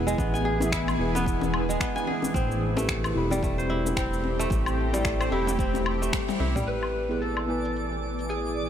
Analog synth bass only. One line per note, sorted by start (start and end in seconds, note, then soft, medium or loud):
0.00 0.15 E1 medium
0.18 0.96 A1 loud
0.99 1.77 E1 medium
2.34 3.12 A1 medium
3.16 3.93 E1 loud
3.97 4.47 E1 medium
4.51 5.28 A1 loud
5.32 6.09 E1 loud
6.40 6.62 C2 medium
6.67 8.69 A1 medium